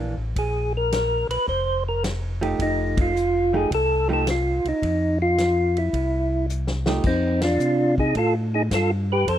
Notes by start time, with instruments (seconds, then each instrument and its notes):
Already playing: tonewheel organ A#1, hollow-body jazz guitar E3 A#3 D4
0.17 tonewheel organ A1
0.36 tonewheel organ A#1 G#4, kick, ride
0.77 tonewheel organ A#4
0.92 snare, hi-hat pedal, ride
1.29 tonewheel organ A#1 B4, ride
1.48 tonewheel organ F1 C5, kick
1.88 tonewheel organ A#4
2.04 snare, hi-hat pedal, ride
2.41 hollow-body jazz guitar F3 A3 D#4 G4, ride
2.59 tonewheel organ F1 D#4, kick, ride
2.97 kick, ride
3.01 tonewheel organ F4
3.16 hi-hat pedal
3.53 hollow-body jazz guitar F3 A3 D#4 G4, tonewheel organ G#4
3.71 tonewheel organ C2 A4, kick, ride
4.09 hollow-body jazz guitar F3 A3 D#4 G4
4.13 tonewheel organ A4
4.27 tonewheel organ F4, snare, hi-hat pedal, ride
4.65 tonewheel organ C2, ride
4.69 tonewheel organ D#4
4.82 tonewheel organ F2, kick, ride
5.22 tonewheel organ F4
5.38 snare, hi-hat pedal, ride
5.77 tonewheel organ E4, ride
5.93 tonewheel organ C2, kick, ride
6.49 hi-hat pedal
6.67 snare
6.86 hollow-body jazz guitar F3 A3 D#4 G4, snare
7.04 tonewheel organ F2 C4 D#4, kick, crash
7.41 tonewheel organ D4 F4, snare, ride
7.60 tonewheel organ C3, hi-hat pedal
7.98 tonewheel organ D#4 G#4, kick
8.15 tonewheel organ A2 F4 A4, kick, ride
8.54 tonewheel organ D#4 G#4
8.71 tonewheel organ G2 A4, kick, snare, hi-hat pedal, ride
8.75 tonewheel organ F4
9.12 tonewheel organ G4 B4
9.27 tonewheel organ F2 A4 C5, kick, ride